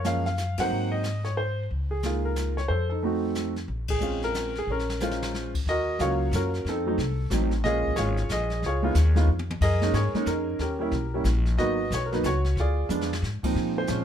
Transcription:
Already playing: F#2 A#4
0.05 F3 G#3 A#3 C#4 F5, snare, hi-hat pedal
0.26 F5, snare
0.38 snare, hi-hat pedal
0.58 G2 F#3 A#3 C4 D#4 C5 F#5, snare, ride
0.70 G#2, brush sweep
0.92 D#5
1.03 snare, hi-hat pedal
1.25 C#5, snare
1.37 C5
1.71 C#2, brush sweep
1.91 G#4
2.03 G#3 A#3 D#4 F4, snare, hi-hat pedal
2.25 A#4
2.36 snare, hi-hat pedal
2.57 C#5, snare
2.68 F2 A4 C5, brush sweep
2.89 D#4 A4
3.03 A3 C4 D#4 F#4
3.35 snare, hi-hat pedal
3.56 snare
3.68 A#1, brush sweep
3.88 G#4, kick, ride
4.00 G#3 C4 C#4 F4, hi-hat pedal
4.22 A#4, snare
4.34 snare, hi-hat pedal
4.55 G#4, snare
4.67 A#1 C#4
4.72 A#4
4.79 snare
4.90 snare
5.00 G#3 C#4 F4 C5, snare, hi-hat pedal
5.11 snare
5.22 snare
5.34 snare
5.54 kick, crash
5.65 D#2 D#5, brush sweep, snare
5.70 F#4 A#4
5.99 C#2 F#3 A#3 C#4 F4 F#4 C#5 F5, snare, hi-hat pedal
6.31 F#2 F#4 A#4, snare, hi-hat pedal
6.35 C#4
6.54 snare
6.65 F2 D#4, brush sweep, snare
6.69 C4 A4
6.86 F#3 A3 C4 D#4
6.98 C2, snare
7.30 A1 F#3 A3 C4 D#4, snare, hi-hat pedal
7.51 snare
7.64 A#1 G#3 A#3 C#4 F4 G#4 D#5, brush sweep, snare
7.84 kick
7.96 G#1 F4 G#4 C#5, snare, hi-hat pedal
8.17 snare
8.29 A#1 D#5, snare, hi-hat pedal
8.33 G#4
8.50 snare
8.62 C#2, brush sweep, snare
8.66 F4 G#4 C#5
8.82 G#3 B3 D#4 F4
8.95 D#2, snare, hi-hat pedal
9.15 G#3 B3 D#4 F4, snare
9.27 F2
9.39 high tom
9.50 high tom
9.61 F#2 G#4 A#4 D#5, brush sweep, kick, snare, crash
9.82 G#3 A#3 C#4 D#4, snare
9.93 G#2 G#4 A#4 C#5, snare, hi-hat pedal
10.14 G#3 A#3 C#4 D#4, muted upright bass stroke, snare
10.26 F2 C#4 D#4 A#4, snare, hi-hat pedal
10.59 D#2 C#4 G4 A#4, brush sweep, snare
10.79 G3 A#3 C#4 E4
10.92 B1, snare
11.14 G3 A#3 C#4 E4
11.24 A#1, snare, hi-hat pedal
11.46 snare
11.57 G#1 F#3 A#3 B3 D#4 F#4 B4 D#5, brush sweep, snare
11.91 B1 C#5, snare, hi-hat pedal
12.06 A#4
12.12 F#3 A#3 B3 D#4 B4, snare
12.23 C#2 F#4 C#5, snare, hi-hat pedal
12.44 snare
12.56 D2 F4, brush sweep, snare
12.60 G#4 D5
12.89 F2 F3 G#3 B3 D4, hi-hat pedal
13.01 snare
13.13 snare
13.22 G#2, snare
13.43 A#2 F3 G#3 C4 D#4, muted upright bass stroke, kick, crash
13.55 A#2, brush sweep, snare
13.78 C5
13.87 A#1 F3 G#3 C4 C#4, snare, hi-hat pedal

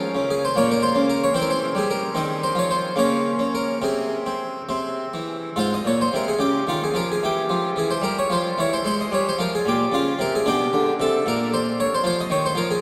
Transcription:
Already playing: C#4 A#4
0.15 C#3
0.30 G#4
0.45 C5
0.56 A#2 A#3 C#5
0.71 A#4
0.83 C5
0.95 C#3
1.10 A#4
1.24 C#5
1.34 E3 C4 C5
1.42 A#4
1.50 C5
1.75 G3 G#4
1.91 A#4
2.15 D#3 C4 D#5
2.43 C5
2.55 F3 C#5
2.71 C5
2.96 C#3 A#3 C#5
3.39 C#4
3.55 A#4
3.82 C3 C4 G#4
4.26 C4
4.69 C3 C4
5.14 E3
5.56 G#2 F4 C5
5.74 D#5
5.85 A#2 C#5
6.01 C5
6.13 C3 A#4
6.28 G#4
6.39 C#3 G4
6.67 D#3 F4
6.84 G#4
6.94 F3 A#4
7.12 G#4
7.23 E3 G4
7.49 F3
7.76 E3 G#4
7.91 C5
8.02 G3 A#4
8.19 C#5
8.30 F3 C5
8.58 E3 C#5
8.73 C5
8.85 G#3 C5
9.01 D#5
9.12 G3 C#5
9.29 C5
9.38 F3 A#4
9.55 G#4
9.66 A#2 G4
9.92 C#3 F4
10.19 C3 A#4
10.35 G#4
10.46 B2 D4 G4
10.73 D3
11.00 C3 A4
11.26 A#2 A#4
11.54 C5
11.80 C#5
11.95 C5
12.04 F3 C5
12.21 D#5
12.30 D#3 C#5
12.46 C5
12.55 F3 A#4
12.71 G#4

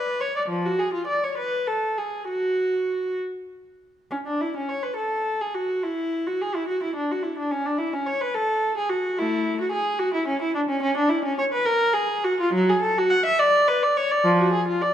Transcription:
Already playing: B4
0.21 C#5
0.36 D5
0.48 F3
0.65 F#4
0.79 G#4
0.93 F4
1.07 D5
1.24 C#5
1.38 B4
1.67 A4
1.98 G#4
2.28 F#4
4.11 C#4
4.26 D4
4.41 E4
4.56 C#4
4.69 C#5
4.83 B4
4.97 A4
5.41 G#4
5.54 F#4
5.83 E4
6.27 F#4
6.41 G#4
6.55 E4
6.68 F#4
6.83 E4
6.96 D4
7.11 F#4
7.23 E4
7.38 D4
7.51 C#4
7.66 D4
7.78 E4
7.93 C#4
8.06 C#5
8.21 B4
8.35 A4
8.77 G#4
8.90 F#4
9.18 A3 E4
9.61 F#4
9.72 G#4
9.99 F#4
10.14 E4
10.28 C#4
10.42 E4
10.55 D4
10.69 C#4
10.82 C#4
10.97 D4
11.09 E4
11.25 C#4
11.39 C#5
11.53 B4
11.65 A#4
11.94 G#4
12.24 F#4
12.40 F4
12.54 F#3
12.70 G#4
12.82 A4
12.99 F#4
13.10 F#5
13.26 E5
13.39 D5
13.68 B4
13.83 D5
13.97 C#5
14.11 D5
14.24 F3
14.39 F#4
14.53 G#4
14.68 F4
14.81 D5

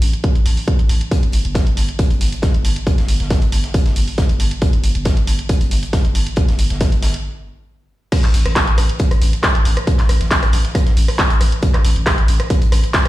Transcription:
0.02 A1, open hi-hat
0.13 closed hi-hat
0.24 kick, closed hi-hat
0.35 A1, closed hi-hat
0.46 A1, open hi-hat
0.57 open hi-hat
0.68 kick, closed hi-hat
0.79 A1, closed hi-hat
0.89 A1, open hi-hat
1.01 closed hi-hat
1.11 kick, closed hi-hat
1.23 G1, closed hi-hat
1.32 G1, closed hi-hat, open hi-hat
1.45 G1, closed hi-hat
1.55 kick, snare, closed hi-hat
1.67 G1, closed hi-hat
1.77 G1, closed hi-hat, open hi-hat
1.89 closed hi-hat
1.99 kick, closed hi-hat
2.10 G1, closed hi-hat
2.21 G1, closed hi-hat, open hi-hat
2.32 closed hi-hat
2.42 kick, snare, closed hi-hat
2.54 G1, closed hi-hat
2.65 G1, closed hi-hat, open hi-hat
2.76 closed hi-hat
2.87 kick, closed hi-hat
2.98 G1, snare, closed hi-hat
3.08 G1, closed hi-hat, open hi-hat
3.20 G1, snare, closed hi-hat
3.30 kick, snare, closed hi-hat
3.42 G1, closed hi-hat
3.52 G1, closed hi-hat, open hi-hat
3.64 snare, closed hi-hat
3.74 kick, closed hi-hat
3.86 G1, snare, closed hi-hat
3.96 G1, closed hi-hat, open hi-hat
4.08 open hi-hat
4.18 kick, snare, closed hi-hat
4.29 G1, closed hi-hat
4.40 G1, closed hi-hat, open hi-hat
4.51 closed hi-hat
4.62 kick, closed hi-hat
4.73 G1, closed hi-hat
4.84 G1, closed hi-hat, open hi-hat
4.95 G1, closed hi-hat
5.05 kick, snare, closed hi-hat
5.17 G1, closed hi-hat
5.27 G1, closed hi-hat, open hi-hat
5.39 closed hi-hat
5.49 kick, closed hi-hat
5.61 G1, closed hi-hat
5.71 G1, closed hi-hat, open hi-hat
5.83 closed hi-hat
5.93 kick, snare, closed hi-hat
6.05 G1, closed hi-hat
6.15 G1, closed hi-hat, open hi-hat
6.27 closed hi-hat
6.36 kick, closed hi-hat
6.48 G1, snare, closed hi-hat
6.59 G1, closed hi-hat, open hi-hat
6.70 G1, snare, closed hi-hat
6.81 kick, snare, closed hi-hat
6.92 G1, closed hi-hat
7.02 G1, snare, closed hi-hat, open hi-hat
7.14 closed hi-hat
8.12 kick, cross-stick, closed hi-hat, crash
8.24 A1, clap, closed hi-hat
8.34 A1, closed hi-hat, open hi-hat
8.46 A1, cross-stick, closed hi-hat
8.56 kick, snare, clap, closed hi-hat
8.67 A1, closed hi-hat
8.78 A1, cross-stick, closed hi-hat, open hi-hat
8.89 closed hi-hat
8.99 kick, closed hi-hat
9.11 A1, cross-stick, closed hi-hat
9.22 A1, closed hi-hat, open hi-hat
9.33 closed hi-hat
9.43 kick, cross-stick, snare, clap, closed hi-hat
9.55 A1, closed hi-hat
9.65 A1, closed hi-hat, open hi-hat
9.77 cross-stick, closed hi-hat
9.87 kick, closed hi-hat
9.98 A1, snare, clap, closed hi-hat
10.09 A1, cross-stick, closed hi-hat, open hi-hat
10.21 A1, snare, closed hi-hat
10.31 kick, snare, clap, closed hi-hat
10.43 A1, cross-stick, closed hi-hat
10.53 A1, closed hi-hat, open hi-hat
10.65 snare, closed hi-hat
10.75 kick, cross-stick, closed hi-hat
10.86 A1, snare, closed hi-hat
10.97 A1, closed hi-hat, open hi-hat
11.08 cross-stick, open hi-hat
11.19 kick, snare, clap, closed hi-hat
11.30 A1, closed hi-hat
11.40 A1, cross-stick, closed hi-hat, open hi-hat
11.52 closed hi-hat
11.62 kick, closed hi-hat
11.74 A1, cross-stick, clap, closed hi-hat
11.84 A1, closed hi-hat, open hi-hat
11.96 A1, closed hi-hat
12.06 kick, cross-stick, snare, clap, closed hi-hat
12.18 A1, closed hi-hat
12.28 A1, closed hi-hat, open hi-hat
12.40 cross-stick, closed hi-hat
12.50 kick, closed hi-hat
12.62 A1, closed hi-hat
12.72 A1, cross-stick, closed hi-hat, open hi-hat
12.84 closed hi-hat
12.94 kick, snare, clap, closed hi-hat

